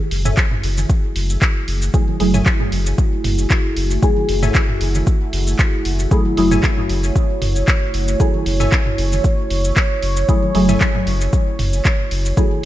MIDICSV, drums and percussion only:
0, 0, Header, 1, 2, 480
1, 0, Start_track
1, 0, Key_signature, 3, "minor"
1, 0, Tempo, 521739
1, 1784, Time_signature, 4, 2, 24, 8
1, 11639, End_track
2, 0, Start_track
2, 0, Title_t, "Drums"
2, 104, Note_on_c, 9, 46, 85
2, 196, Note_off_c, 9, 46, 0
2, 233, Note_on_c, 9, 45, 104
2, 233, Note_on_c, 9, 69, 54
2, 325, Note_off_c, 9, 45, 0
2, 325, Note_off_c, 9, 69, 0
2, 344, Note_on_c, 9, 36, 123
2, 344, Note_on_c, 9, 39, 79
2, 344, Note_on_c, 9, 69, 41
2, 436, Note_off_c, 9, 36, 0
2, 436, Note_off_c, 9, 39, 0
2, 436, Note_off_c, 9, 69, 0
2, 473, Note_on_c, 9, 45, 81
2, 565, Note_off_c, 9, 45, 0
2, 584, Note_on_c, 9, 46, 89
2, 676, Note_off_c, 9, 46, 0
2, 713, Note_on_c, 9, 63, 52
2, 713, Note_on_c, 9, 69, 52
2, 805, Note_off_c, 9, 63, 0
2, 805, Note_off_c, 9, 69, 0
2, 824, Note_on_c, 9, 36, 123
2, 824, Note_on_c, 9, 69, 40
2, 916, Note_off_c, 9, 36, 0
2, 916, Note_off_c, 9, 69, 0
2, 1064, Note_on_c, 9, 46, 88
2, 1156, Note_off_c, 9, 46, 0
2, 1194, Note_on_c, 9, 69, 52
2, 1286, Note_off_c, 9, 69, 0
2, 1304, Note_on_c, 9, 36, 118
2, 1305, Note_on_c, 9, 39, 76
2, 1305, Note_on_c, 9, 69, 41
2, 1396, Note_off_c, 9, 36, 0
2, 1397, Note_off_c, 9, 39, 0
2, 1397, Note_off_c, 9, 69, 0
2, 1544, Note_on_c, 9, 46, 86
2, 1636, Note_off_c, 9, 46, 0
2, 1674, Note_on_c, 9, 69, 50
2, 1766, Note_off_c, 9, 69, 0
2, 1784, Note_on_c, 9, 36, 122
2, 1785, Note_on_c, 9, 69, 39
2, 1876, Note_off_c, 9, 36, 0
2, 1877, Note_off_c, 9, 69, 0
2, 1914, Note_on_c, 9, 63, 61
2, 2006, Note_off_c, 9, 63, 0
2, 2024, Note_on_c, 9, 46, 84
2, 2116, Note_off_c, 9, 46, 0
2, 2153, Note_on_c, 9, 45, 95
2, 2154, Note_on_c, 9, 69, 51
2, 2245, Note_off_c, 9, 45, 0
2, 2246, Note_off_c, 9, 69, 0
2, 2264, Note_on_c, 9, 36, 127
2, 2264, Note_on_c, 9, 39, 73
2, 2264, Note_on_c, 9, 69, 40
2, 2356, Note_off_c, 9, 36, 0
2, 2356, Note_off_c, 9, 39, 0
2, 2356, Note_off_c, 9, 69, 0
2, 2393, Note_on_c, 9, 45, 80
2, 2485, Note_off_c, 9, 45, 0
2, 2504, Note_on_c, 9, 46, 91
2, 2596, Note_off_c, 9, 46, 0
2, 2635, Note_on_c, 9, 69, 50
2, 2727, Note_off_c, 9, 69, 0
2, 2744, Note_on_c, 9, 36, 118
2, 2745, Note_on_c, 9, 69, 39
2, 2836, Note_off_c, 9, 36, 0
2, 2837, Note_off_c, 9, 69, 0
2, 2984, Note_on_c, 9, 45, 78
2, 2984, Note_on_c, 9, 46, 89
2, 3076, Note_off_c, 9, 45, 0
2, 3076, Note_off_c, 9, 46, 0
2, 3114, Note_on_c, 9, 69, 51
2, 3206, Note_off_c, 9, 69, 0
2, 3224, Note_on_c, 9, 36, 115
2, 3225, Note_on_c, 9, 39, 71
2, 3225, Note_on_c, 9, 69, 39
2, 3316, Note_off_c, 9, 36, 0
2, 3317, Note_off_c, 9, 39, 0
2, 3317, Note_off_c, 9, 69, 0
2, 3464, Note_on_c, 9, 46, 88
2, 3556, Note_off_c, 9, 46, 0
2, 3594, Note_on_c, 9, 69, 48
2, 3686, Note_off_c, 9, 69, 0
2, 3704, Note_on_c, 9, 36, 120
2, 3705, Note_on_c, 9, 69, 38
2, 3796, Note_off_c, 9, 36, 0
2, 3797, Note_off_c, 9, 69, 0
2, 3833, Note_on_c, 9, 63, 59
2, 3925, Note_off_c, 9, 63, 0
2, 3944, Note_on_c, 9, 46, 84
2, 4036, Note_off_c, 9, 46, 0
2, 4073, Note_on_c, 9, 45, 97
2, 4074, Note_on_c, 9, 69, 47
2, 4165, Note_off_c, 9, 45, 0
2, 4166, Note_off_c, 9, 69, 0
2, 4184, Note_on_c, 9, 36, 121
2, 4184, Note_on_c, 9, 39, 73
2, 4184, Note_on_c, 9, 69, 38
2, 4276, Note_off_c, 9, 36, 0
2, 4276, Note_off_c, 9, 39, 0
2, 4276, Note_off_c, 9, 69, 0
2, 4313, Note_on_c, 9, 45, 76
2, 4405, Note_off_c, 9, 45, 0
2, 4423, Note_on_c, 9, 46, 85
2, 4515, Note_off_c, 9, 46, 0
2, 4553, Note_on_c, 9, 63, 54
2, 4553, Note_on_c, 9, 69, 51
2, 4645, Note_off_c, 9, 63, 0
2, 4645, Note_off_c, 9, 69, 0
2, 4663, Note_on_c, 9, 69, 39
2, 4664, Note_on_c, 9, 36, 117
2, 4755, Note_off_c, 9, 69, 0
2, 4756, Note_off_c, 9, 36, 0
2, 4904, Note_on_c, 9, 46, 87
2, 4996, Note_off_c, 9, 46, 0
2, 5033, Note_on_c, 9, 69, 50
2, 5125, Note_off_c, 9, 69, 0
2, 5144, Note_on_c, 9, 36, 121
2, 5144, Note_on_c, 9, 39, 71
2, 5144, Note_on_c, 9, 69, 36
2, 5236, Note_off_c, 9, 36, 0
2, 5236, Note_off_c, 9, 39, 0
2, 5236, Note_off_c, 9, 69, 0
2, 5383, Note_on_c, 9, 46, 90
2, 5475, Note_off_c, 9, 46, 0
2, 5513, Note_on_c, 9, 69, 49
2, 5605, Note_off_c, 9, 69, 0
2, 5624, Note_on_c, 9, 36, 121
2, 5624, Note_on_c, 9, 69, 38
2, 5716, Note_off_c, 9, 36, 0
2, 5716, Note_off_c, 9, 69, 0
2, 5754, Note_on_c, 9, 63, 56
2, 5846, Note_off_c, 9, 63, 0
2, 5863, Note_on_c, 9, 46, 77
2, 5955, Note_off_c, 9, 46, 0
2, 5993, Note_on_c, 9, 45, 95
2, 5993, Note_on_c, 9, 69, 48
2, 6085, Note_off_c, 9, 45, 0
2, 6085, Note_off_c, 9, 69, 0
2, 6104, Note_on_c, 9, 36, 117
2, 6104, Note_on_c, 9, 39, 74
2, 6104, Note_on_c, 9, 69, 37
2, 6196, Note_off_c, 9, 36, 0
2, 6196, Note_off_c, 9, 39, 0
2, 6196, Note_off_c, 9, 69, 0
2, 6233, Note_on_c, 9, 45, 72
2, 6325, Note_off_c, 9, 45, 0
2, 6343, Note_on_c, 9, 46, 81
2, 6435, Note_off_c, 9, 46, 0
2, 6473, Note_on_c, 9, 69, 47
2, 6565, Note_off_c, 9, 69, 0
2, 6584, Note_on_c, 9, 36, 112
2, 6584, Note_on_c, 9, 69, 35
2, 6676, Note_off_c, 9, 36, 0
2, 6676, Note_off_c, 9, 69, 0
2, 6824, Note_on_c, 9, 45, 72
2, 6824, Note_on_c, 9, 46, 85
2, 6916, Note_off_c, 9, 45, 0
2, 6916, Note_off_c, 9, 46, 0
2, 6954, Note_on_c, 9, 69, 46
2, 7046, Note_off_c, 9, 69, 0
2, 7064, Note_on_c, 9, 36, 119
2, 7064, Note_on_c, 9, 39, 77
2, 7064, Note_on_c, 9, 69, 35
2, 7156, Note_off_c, 9, 36, 0
2, 7156, Note_off_c, 9, 39, 0
2, 7156, Note_off_c, 9, 69, 0
2, 7304, Note_on_c, 9, 46, 85
2, 7396, Note_off_c, 9, 46, 0
2, 7434, Note_on_c, 9, 69, 45
2, 7526, Note_off_c, 9, 69, 0
2, 7544, Note_on_c, 9, 36, 117
2, 7544, Note_on_c, 9, 69, 38
2, 7636, Note_off_c, 9, 36, 0
2, 7636, Note_off_c, 9, 69, 0
2, 7674, Note_on_c, 9, 63, 53
2, 7766, Note_off_c, 9, 63, 0
2, 7785, Note_on_c, 9, 46, 79
2, 7877, Note_off_c, 9, 46, 0
2, 7913, Note_on_c, 9, 45, 90
2, 7914, Note_on_c, 9, 69, 49
2, 8005, Note_off_c, 9, 45, 0
2, 8006, Note_off_c, 9, 69, 0
2, 8024, Note_on_c, 9, 36, 110
2, 8025, Note_on_c, 9, 39, 80
2, 8025, Note_on_c, 9, 69, 37
2, 8116, Note_off_c, 9, 36, 0
2, 8117, Note_off_c, 9, 39, 0
2, 8117, Note_off_c, 9, 69, 0
2, 8152, Note_on_c, 9, 45, 78
2, 8244, Note_off_c, 9, 45, 0
2, 8264, Note_on_c, 9, 46, 85
2, 8356, Note_off_c, 9, 46, 0
2, 8393, Note_on_c, 9, 63, 50
2, 8394, Note_on_c, 9, 69, 47
2, 8485, Note_off_c, 9, 63, 0
2, 8486, Note_off_c, 9, 69, 0
2, 8504, Note_on_c, 9, 36, 109
2, 8505, Note_on_c, 9, 69, 35
2, 8596, Note_off_c, 9, 36, 0
2, 8597, Note_off_c, 9, 69, 0
2, 8744, Note_on_c, 9, 46, 77
2, 8836, Note_off_c, 9, 46, 0
2, 8873, Note_on_c, 9, 69, 49
2, 8965, Note_off_c, 9, 69, 0
2, 8983, Note_on_c, 9, 39, 72
2, 8983, Note_on_c, 9, 69, 37
2, 8984, Note_on_c, 9, 36, 109
2, 9075, Note_off_c, 9, 39, 0
2, 9075, Note_off_c, 9, 69, 0
2, 9076, Note_off_c, 9, 36, 0
2, 9223, Note_on_c, 9, 46, 79
2, 9315, Note_off_c, 9, 46, 0
2, 9353, Note_on_c, 9, 69, 49
2, 9445, Note_off_c, 9, 69, 0
2, 9464, Note_on_c, 9, 36, 117
2, 9464, Note_on_c, 9, 69, 40
2, 9556, Note_off_c, 9, 36, 0
2, 9556, Note_off_c, 9, 69, 0
2, 9593, Note_on_c, 9, 63, 55
2, 9685, Note_off_c, 9, 63, 0
2, 9704, Note_on_c, 9, 46, 76
2, 9796, Note_off_c, 9, 46, 0
2, 9833, Note_on_c, 9, 45, 93
2, 9833, Note_on_c, 9, 69, 50
2, 9925, Note_off_c, 9, 45, 0
2, 9925, Note_off_c, 9, 69, 0
2, 9943, Note_on_c, 9, 39, 82
2, 9943, Note_on_c, 9, 69, 38
2, 9944, Note_on_c, 9, 36, 115
2, 10035, Note_off_c, 9, 39, 0
2, 10035, Note_off_c, 9, 69, 0
2, 10036, Note_off_c, 9, 36, 0
2, 10073, Note_on_c, 9, 45, 77
2, 10165, Note_off_c, 9, 45, 0
2, 10184, Note_on_c, 9, 46, 78
2, 10276, Note_off_c, 9, 46, 0
2, 10313, Note_on_c, 9, 69, 50
2, 10405, Note_off_c, 9, 69, 0
2, 10423, Note_on_c, 9, 36, 111
2, 10424, Note_on_c, 9, 69, 38
2, 10515, Note_off_c, 9, 36, 0
2, 10516, Note_off_c, 9, 69, 0
2, 10663, Note_on_c, 9, 45, 79
2, 10664, Note_on_c, 9, 46, 77
2, 10755, Note_off_c, 9, 45, 0
2, 10756, Note_off_c, 9, 46, 0
2, 10793, Note_on_c, 9, 69, 51
2, 10885, Note_off_c, 9, 69, 0
2, 10903, Note_on_c, 9, 36, 115
2, 10904, Note_on_c, 9, 39, 75
2, 10904, Note_on_c, 9, 69, 37
2, 10995, Note_off_c, 9, 36, 0
2, 10996, Note_off_c, 9, 39, 0
2, 10996, Note_off_c, 9, 69, 0
2, 11144, Note_on_c, 9, 46, 80
2, 11236, Note_off_c, 9, 46, 0
2, 11273, Note_on_c, 9, 69, 48
2, 11365, Note_off_c, 9, 69, 0
2, 11383, Note_on_c, 9, 36, 125
2, 11383, Note_on_c, 9, 69, 41
2, 11475, Note_off_c, 9, 36, 0
2, 11475, Note_off_c, 9, 69, 0
2, 11512, Note_on_c, 9, 63, 54
2, 11604, Note_off_c, 9, 63, 0
2, 11639, End_track
0, 0, End_of_file